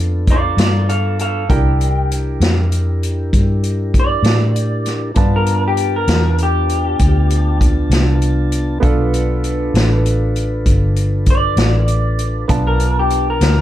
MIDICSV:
0, 0, Header, 1, 6, 480
1, 0, Start_track
1, 0, Tempo, 611621
1, 1170, Time_signature, 12, 3, 24, 8
1, 10684, End_track
2, 0, Start_track
2, 0, Title_t, "Clean electric guitar"
2, 0, Program_c, 0, 27
2, 240, Note_on_c, 0, 65, 66
2, 248, Note_on_c, 0, 74, 72
2, 463, Note_off_c, 0, 74, 0
2, 466, Note_off_c, 0, 65, 0
2, 474, Note_on_c, 0, 65, 64
2, 479, Note_on_c, 0, 74, 69
2, 686, Note_off_c, 0, 65, 0
2, 698, Note_off_c, 0, 74, 0
2, 698, Note_on_c, 0, 69, 59
2, 702, Note_on_c, 0, 77, 72
2, 917, Note_off_c, 0, 69, 0
2, 929, Note_off_c, 0, 77, 0
2, 947, Note_on_c, 0, 69, 67
2, 953, Note_on_c, 0, 77, 62
2, 1163, Note_off_c, 0, 69, 0
2, 1173, Note_off_c, 0, 77, 0
2, 1180, Note_on_c, 0, 79, 87
2, 1640, Note_off_c, 0, 79, 0
2, 3136, Note_on_c, 0, 74, 69
2, 4159, Note_off_c, 0, 74, 0
2, 4207, Note_on_c, 0, 70, 66
2, 4420, Note_off_c, 0, 70, 0
2, 4455, Note_on_c, 0, 67, 81
2, 4664, Note_off_c, 0, 67, 0
2, 4679, Note_on_c, 0, 70, 76
2, 5012, Note_off_c, 0, 70, 0
2, 5045, Note_on_c, 0, 67, 83
2, 5957, Note_off_c, 0, 67, 0
2, 8871, Note_on_c, 0, 74, 89
2, 9910, Note_off_c, 0, 74, 0
2, 9946, Note_on_c, 0, 70, 75
2, 10171, Note_off_c, 0, 70, 0
2, 10197, Note_on_c, 0, 67, 63
2, 10417, Note_off_c, 0, 67, 0
2, 10438, Note_on_c, 0, 70, 66
2, 10684, Note_off_c, 0, 70, 0
2, 10684, End_track
3, 0, Start_track
3, 0, Title_t, "Tonewheel organ"
3, 0, Program_c, 1, 16
3, 0, Note_on_c, 1, 59, 64
3, 0, Note_on_c, 1, 62, 65
3, 0, Note_on_c, 1, 65, 72
3, 0, Note_on_c, 1, 69, 65
3, 1135, Note_off_c, 1, 65, 0
3, 1136, Note_off_c, 1, 59, 0
3, 1137, Note_off_c, 1, 69, 0
3, 1138, Note_off_c, 1, 62, 0
3, 1167, Note_on_c, 1, 62, 62
3, 1168, Note_on_c, 1, 70, 66
3, 1170, Note_on_c, 1, 67, 69
3, 1171, Note_on_c, 1, 64, 59
3, 4016, Note_off_c, 1, 62, 0
3, 4016, Note_off_c, 1, 70, 0
3, 4017, Note_off_c, 1, 64, 0
3, 4017, Note_off_c, 1, 67, 0
3, 4036, Note_on_c, 1, 65, 69
3, 4037, Note_on_c, 1, 81, 66
3, 4038, Note_on_c, 1, 62, 64
3, 4041, Note_on_c, 1, 59, 72
3, 6893, Note_off_c, 1, 65, 0
3, 6894, Note_off_c, 1, 62, 0
3, 6894, Note_off_c, 1, 81, 0
3, 6895, Note_off_c, 1, 59, 0
3, 6921, Note_on_c, 1, 69, 63
3, 6927, Note_on_c, 1, 65, 66
3, 6932, Note_on_c, 1, 62, 67
3, 6932, Note_on_c, 1, 71, 66
3, 9778, Note_off_c, 1, 69, 0
3, 9781, Note_off_c, 1, 65, 0
3, 9784, Note_off_c, 1, 62, 0
3, 9784, Note_off_c, 1, 71, 0
3, 9791, Note_on_c, 1, 81, 59
3, 9795, Note_on_c, 1, 65, 64
3, 9799, Note_on_c, 1, 59, 69
3, 9800, Note_on_c, 1, 62, 66
3, 10684, Note_off_c, 1, 59, 0
3, 10684, Note_off_c, 1, 62, 0
3, 10684, Note_off_c, 1, 65, 0
3, 10684, Note_off_c, 1, 81, 0
3, 10684, End_track
4, 0, Start_track
4, 0, Title_t, "Grand piano"
4, 0, Program_c, 2, 0
4, 0, Note_on_c, 2, 59, 48
4, 0, Note_on_c, 2, 62, 41
4, 0, Note_on_c, 2, 65, 44
4, 0, Note_on_c, 2, 69, 57
4, 1138, Note_off_c, 2, 59, 0
4, 1139, Note_off_c, 2, 62, 0
4, 1142, Note_off_c, 2, 65, 0
4, 1144, Note_off_c, 2, 69, 0
4, 1172, Note_on_c, 2, 70, 50
4, 1176, Note_on_c, 2, 62, 47
4, 1181, Note_on_c, 2, 64, 45
4, 1188, Note_on_c, 2, 67, 51
4, 4015, Note_off_c, 2, 70, 0
4, 4018, Note_off_c, 2, 62, 0
4, 4020, Note_off_c, 2, 64, 0
4, 4024, Note_off_c, 2, 67, 0
4, 4049, Note_on_c, 2, 59, 50
4, 4053, Note_on_c, 2, 62, 44
4, 4057, Note_on_c, 2, 65, 45
4, 4059, Note_on_c, 2, 81, 59
4, 6895, Note_off_c, 2, 59, 0
4, 6899, Note_off_c, 2, 62, 0
4, 6901, Note_off_c, 2, 65, 0
4, 6902, Note_off_c, 2, 81, 0
4, 6907, Note_on_c, 2, 59, 55
4, 6916, Note_on_c, 2, 62, 51
4, 6922, Note_on_c, 2, 65, 62
4, 6926, Note_on_c, 2, 69, 67
4, 9769, Note_off_c, 2, 59, 0
4, 9773, Note_off_c, 2, 62, 0
4, 9776, Note_off_c, 2, 65, 0
4, 9778, Note_off_c, 2, 69, 0
4, 9794, Note_on_c, 2, 59, 49
4, 9799, Note_on_c, 2, 62, 48
4, 9806, Note_on_c, 2, 65, 43
4, 9810, Note_on_c, 2, 81, 53
4, 10684, Note_off_c, 2, 59, 0
4, 10684, Note_off_c, 2, 62, 0
4, 10684, Note_off_c, 2, 65, 0
4, 10684, Note_off_c, 2, 81, 0
4, 10684, End_track
5, 0, Start_track
5, 0, Title_t, "Fingered electric bass"
5, 0, Program_c, 3, 33
5, 0, Note_on_c, 3, 41, 68
5, 434, Note_off_c, 3, 41, 0
5, 448, Note_on_c, 3, 43, 81
5, 1146, Note_off_c, 3, 43, 0
5, 1174, Note_on_c, 3, 36, 77
5, 1869, Note_off_c, 3, 36, 0
5, 1885, Note_on_c, 3, 41, 89
5, 2584, Note_off_c, 3, 41, 0
5, 2611, Note_on_c, 3, 43, 71
5, 3307, Note_off_c, 3, 43, 0
5, 3316, Note_on_c, 3, 45, 81
5, 4019, Note_off_c, 3, 45, 0
5, 4051, Note_on_c, 3, 43, 81
5, 4747, Note_off_c, 3, 43, 0
5, 4768, Note_on_c, 3, 40, 91
5, 5465, Note_off_c, 3, 40, 0
5, 5488, Note_on_c, 3, 38, 84
5, 6185, Note_off_c, 3, 38, 0
5, 6196, Note_on_c, 3, 36, 82
5, 6900, Note_off_c, 3, 36, 0
5, 6928, Note_on_c, 3, 35, 74
5, 7626, Note_off_c, 3, 35, 0
5, 7643, Note_on_c, 3, 33, 87
5, 8345, Note_off_c, 3, 33, 0
5, 8362, Note_on_c, 3, 31, 81
5, 9064, Note_off_c, 3, 31, 0
5, 9077, Note_on_c, 3, 33, 92
5, 9782, Note_off_c, 3, 33, 0
5, 9801, Note_on_c, 3, 35, 78
5, 10504, Note_off_c, 3, 35, 0
5, 10523, Note_on_c, 3, 38, 88
5, 10684, Note_off_c, 3, 38, 0
5, 10684, End_track
6, 0, Start_track
6, 0, Title_t, "Drums"
6, 214, Note_on_c, 9, 42, 60
6, 216, Note_on_c, 9, 36, 75
6, 292, Note_off_c, 9, 42, 0
6, 294, Note_off_c, 9, 36, 0
6, 456, Note_on_c, 9, 42, 78
6, 466, Note_on_c, 9, 38, 98
6, 535, Note_off_c, 9, 42, 0
6, 545, Note_off_c, 9, 38, 0
6, 701, Note_on_c, 9, 42, 49
6, 779, Note_off_c, 9, 42, 0
6, 936, Note_on_c, 9, 42, 56
6, 1014, Note_off_c, 9, 42, 0
6, 1175, Note_on_c, 9, 36, 90
6, 1175, Note_on_c, 9, 42, 68
6, 1253, Note_off_c, 9, 36, 0
6, 1253, Note_off_c, 9, 42, 0
6, 1418, Note_on_c, 9, 42, 58
6, 1496, Note_off_c, 9, 42, 0
6, 1660, Note_on_c, 9, 42, 62
6, 1738, Note_off_c, 9, 42, 0
6, 1894, Note_on_c, 9, 42, 79
6, 1904, Note_on_c, 9, 38, 109
6, 1973, Note_off_c, 9, 42, 0
6, 1983, Note_off_c, 9, 38, 0
6, 2134, Note_on_c, 9, 42, 53
6, 2212, Note_off_c, 9, 42, 0
6, 2379, Note_on_c, 9, 42, 56
6, 2457, Note_off_c, 9, 42, 0
6, 2614, Note_on_c, 9, 36, 74
6, 2617, Note_on_c, 9, 42, 74
6, 2693, Note_off_c, 9, 36, 0
6, 2695, Note_off_c, 9, 42, 0
6, 2853, Note_on_c, 9, 42, 57
6, 2931, Note_off_c, 9, 42, 0
6, 3094, Note_on_c, 9, 36, 71
6, 3095, Note_on_c, 9, 42, 63
6, 3172, Note_off_c, 9, 36, 0
6, 3173, Note_off_c, 9, 42, 0
6, 3330, Note_on_c, 9, 42, 73
6, 3341, Note_on_c, 9, 38, 99
6, 3409, Note_off_c, 9, 42, 0
6, 3419, Note_off_c, 9, 38, 0
6, 3577, Note_on_c, 9, 42, 56
6, 3655, Note_off_c, 9, 42, 0
6, 3811, Note_on_c, 9, 42, 55
6, 3821, Note_on_c, 9, 38, 29
6, 3890, Note_off_c, 9, 42, 0
6, 3900, Note_off_c, 9, 38, 0
6, 4045, Note_on_c, 9, 42, 70
6, 4052, Note_on_c, 9, 36, 98
6, 4124, Note_off_c, 9, 42, 0
6, 4130, Note_off_c, 9, 36, 0
6, 4288, Note_on_c, 9, 42, 59
6, 4367, Note_off_c, 9, 42, 0
6, 4528, Note_on_c, 9, 42, 52
6, 4606, Note_off_c, 9, 42, 0
6, 4768, Note_on_c, 9, 42, 75
6, 4779, Note_on_c, 9, 38, 102
6, 4847, Note_off_c, 9, 42, 0
6, 4857, Note_off_c, 9, 38, 0
6, 5010, Note_on_c, 9, 42, 55
6, 5088, Note_off_c, 9, 42, 0
6, 5254, Note_on_c, 9, 42, 60
6, 5332, Note_off_c, 9, 42, 0
6, 5488, Note_on_c, 9, 42, 76
6, 5491, Note_on_c, 9, 36, 78
6, 5567, Note_off_c, 9, 42, 0
6, 5569, Note_off_c, 9, 36, 0
6, 5732, Note_on_c, 9, 42, 64
6, 5810, Note_off_c, 9, 42, 0
6, 5971, Note_on_c, 9, 36, 82
6, 5975, Note_on_c, 9, 42, 59
6, 6050, Note_off_c, 9, 36, 0
6, 6054, Note_off_c, 9, 42, 0
6, 6210, Note_on_c, 9, 42, 87
6, 6220, Note_on_c, 9, 38, 100
6, 6289, Note_off_c, 9, 42, 0
6, 6299, Note_off_c, 9, 38, 0
6, 6448, Note_on_c, 9, 42, 54
6, 6527, Note_off_c, 9, 42, 0
6, 6686, Note_on_c, 9, 42, 62
6, 6764, Note_off_c, 9, 42, 0
6, 6928, Note_on_c, 9, 36, 100
6, 6929, Note_on_c, 9, 42, 69
6, 7007, Note_off_c, 9, 36, 0
6, 7007, Note_off_c, 9, 42, 0
6, 7170, Note_on_c, 9, 42, 59
6, 7249, Note_off_c, 9, 42, 0
6, 7407, Note_on_c, 9, 42, 53
6, 7485, Note_off_c, 9, 42, 0
6, 7653, Note_on_c, 9, 42, 73
6, 7663, Note_on_c, 9, 38, 104
6, 7731, Note_off_c, 9, 42, 0
6, 7742, Note_off_c, 9, 38, 0
6, 7892, Note_on_c, 9, 42, 57
6, 7970, Note_off_c, 9, 42, 0
6, 8129, Note_on_c, 9, 42, 51
6, 8207, Note_off_c, 9, 42, 0
6, 8365, Note_on_c, 9, 36, 73
6, 8365, Note_on_c, 9, 42, 70
6, 8443, Note_off_c, 9, 42, 0
6, 8444, Note_off_c, 9, 36, 0
6, 8604, Note_on_c, 9, 42, 53
6, 8682, Note_off_c, 9, 42, 0
6, 8838, Note_on_c, 9, 42, 55
6, 8843, Note_on_c, 9, 36, 71
6, 8917, Note_off_c, 9, 42, 0
6, 8921, Note_off_c, 9, 36, 0
6, 9079, Note_on_c, 9, 42, 72
6, 9089, Note_on_c, 9, 38, 108
6, 9157, Note_off_c, 9, 42, 0
6, 9167, Note_off_c, 9, 38, 0
6, 9321, Note_on_c, 9, 42, 53
6, 9399, Note_off_c, 9, 42, 0
6, 9564, Note_on_c, 9, 42, 57
6, 9642, Note_off_c, 9, 42, 0
6, 9802, Note_on_c, 9, 42, 75
6, 9805, Note_on_c, 9, 36, 97
6, 9881, Note_off_c, 9, 42, 0
6, 9883, Note_off_c, 9, 36, 0
6, 10043, Note_on_c, 9, 42, 61
6, 10121, Note_off_c, 9, 42, 0
6, 10283, Note_on_c, 9, 42, 54
6, 10362, Note_off_c, 9, 42, 0
6, 10524, Note_on_c, 9, 42, 80
6, 10534, Note_on_c, 9, 38, 91
6, 10603, Note_off_c, 9, 42, 0
6, 10613, Note_off_c, 9, 38, 0
6, 10684, End_track
0, 0, End_of_file